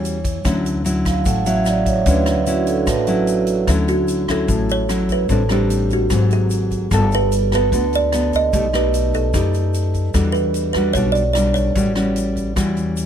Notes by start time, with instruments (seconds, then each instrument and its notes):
Already playing: upright bass E2, nylon-string guitar E3 G3 C#4 F#4
0.05 closed hi-hat, shaker
0.25 kick, closed hi-hat, shaker
0.45 upright bass D2, nylon-string guitar D3 F#3 C#4 E4, kick, cross-stick, closed hi-hat, shaker
0.66 closed hi-hat, shaker
0.85 nylon-string guitar F#3 C#4 E4, closed hi-hat, shaker
1.05 vibraphone F5, kick, cross-stick, closed hi-hat, shaker
1.25 upright bass A1, nylon-string guitar A2, vibraphone F#5, kick, closed hi-hat, shaker
1.46 nylon-string guitar F#3 C#4 E4, vibraphone E5, closed hi-hat, shaker
1.65 vibraphone D5, cross-stick, closed hi-hat, shaker
1.86 vibraphone C#5, kick, closed hi-hat, shaker
2.06 upright bass D2, nylon-string guitar D3 F#3 C#4 E4, vibraphone B4, kick, closed hi-hat, shaker
2.26 vibraphone D4, cross-stick, closed hi-hat, shaker
2.46 nylon-string guitar F#3 C#4 E4, vibraphone F#4, closed hi-hat, shaker
2.67 vibraphone A4, closed hi-hat, shaker
2.87 upright bass A1, nylon-string guitar A2, vibraphone B4, kick, cross-stick, closed hi-hat, shaker
3.07 nylon-string guitar F#3 C#4 E4, vibraphone F#4, closed hi-hat, shaker
3.27 closed hi-hat, shaker
3.47 closed hi-hat, shaker
3.67 upright bass D2, nylon-string guitar D3 F#3 C#4 E4, kalimba A4, kick, cross-stick, closed hi-hat, shaker
3.88 kalimba F#4, closed hi-hat, shaker
4.08 closed hi-hat, shaker
4.28 nylon-string guitar F#3 C#4 E4, kalimba A4, kick, cross-stick, closed hi-hat, shaker
4.48 upright bass A1, nylon-string guitar A2, kick, closed hi-hat, shaker
4.69 kalimba C#5, closed hi-hat, shaker
4.89 nylon-string guitar F#3 C#4 E4, cross-stick, closed hi-hat, shaker
5.09 kalimba B4, kick, closed hi-hat, shaker
5.29 upright bass A1, nylon-string guitar A2 G3 C4 D4, kalimba A4, kick, closed hi-hat, shaker
5.49 nylon-string guitar G3 C4 D4, kalimba G4, cross-stick, closed hi-hat, shaker
5.70 closed hi-hat, shaker
5.90 kalimba F#4, kick, closed hi-hat, shaker
6.10 upright bass G#1, nylon-string guitar G#2 F#3 A#3 C4, kick, cross-stick, closed hi-hat, shaker
6.31 kalimba G#4, closed hi-hat, shaker
6.50 closed hi-hat, shaker
6.71 kick, closed hi-hat, shaker
6.91 upright bass G1, nylon-string guitar G3 B3 F#4 A4, kalimba A4, kick, cross-stick, closed hi-hat, shaker
7.11 kalimba B4, closed hi-hat, shaker
7.32 closed hi-hat, shaker
7.52 nylon-string guitar B3 F#4 A4, kalimba B4, kick, cross-stick, closed hi-hat, shaker
7.72 upright bass D2, nylon-string guitar D3 B3 F#4 A4, kick, closed hi-hat, shaker
7.93 kalimba D5, closed hi-hat, shaker
8.12 nylon-string guitar B3 F#4 A4, cross-stick, closed hi-hat, shaker
8.33 kalimba D#5, kick, closed hi-hat, shaker
8.53 upright bass B1, nylon-string guitar B2 A3 D#4 G4, kick, closed hi-hat, shaker
8.73 nylon-string guitar A3 D#4 G4, kalimba B4, cross-stick, closed hi-hat, shaker
8.94 closed hi-hat, shaker
9.14 kalimba A4, kick, closed hi-hat, shaker
9.34 upright bass F#2, nylon-string guitar A3 D#4 G4, kick, cross-stick, closed hi-hat, shaker
9.54 closed hi-hat, shaker
9.74 closed hi-hat, shaker
9.94 kick, closed hi-hat, shaker
10.14 upright bass E2, nylon-string guitar E3 G3 D4 F#4, kalimba A4, kick, cross-stick, closed hi-hat, shaker
10.32 kalimba B4, closed hi-hat, shaker
10.54 closed hi-hat, shaker
10.73 nylon-string guitar G3 D4 F#4, kalimba B4, kick, cross-stick, closed hi-hat, shaker
10.93 upright bass B1, nylon-string guitar B2 G3 D4 F#4, kalimba C#5, kick, closed hi-hat, shaker
11.12 kalimba D5, closed hi-hat
11.16 shaker
11.33 nylon-string guitar G3 D4 F#4, kalimba D5, cross-stick, closed hi-hat, shaker
11.54 kalimba C#5, kick, closed hi-hat, shaker
11.75 upright bass A1, nylon-string guitar A2 G3 C#4 F#4, kick, closed hi-hat, shaker
11.95 nylon-string guitar G3 C#4 F#4, cross-stick, closed hi-hat, shaker
12.16 closed hi-hat, shaker
12.36 kick, closed hi-hat, shaker
12.56 upright bass E2, nylon-string guitar E3 G3 C#4 F#4, kick, cross-stick, closed hi-hat, shaker
12.77 closed hi-hat, shaker
12.97 closed hi-hat, shaker